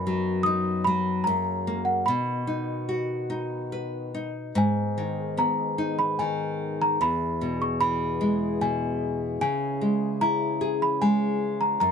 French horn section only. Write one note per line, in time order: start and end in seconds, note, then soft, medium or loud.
0.00 1.25 F#2 medium
0.00 1.22 D#3 medium
0.00 1.25 B3 medium
0.00 4.38 F#4 medium
1.27 2.06 C#3 medium
1.27 2.06 A#3 medium
2.05 4.38 D#3 medium
2.05 4.38 B3 medium
4.55 6.98 D#3 medium
4.55 6.98 B3 medium
4.55 6.97 G#4 medium
7.00 9.38 E3 medium
7.00 9.39 B3 medium
7.00 11.76 G#4 medium
9.40 11.77 E3 medium
9.40 11.92 C#4 medium
11.80 11.92 F#3 medium
11.80 11.92 A#4 medium